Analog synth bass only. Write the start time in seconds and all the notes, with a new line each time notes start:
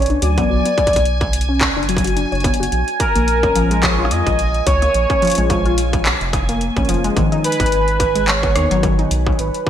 Already playing: B1
0.22 D2
0.50 B1
0.93 B1
1.77 F#1
2.32 F#1
2.60 F#1
2.72 A#1
3.15 A#1
4.11 F2
4.27 A#1
4.67 C#2
4.94 A#1
5.38 A#1
6.21 F1
6.77 A#1
6.89 F1
7.17 G#1
7.60 G#1
8.55 D#2
8.71 G#1
9.11 B1
9.39 G#1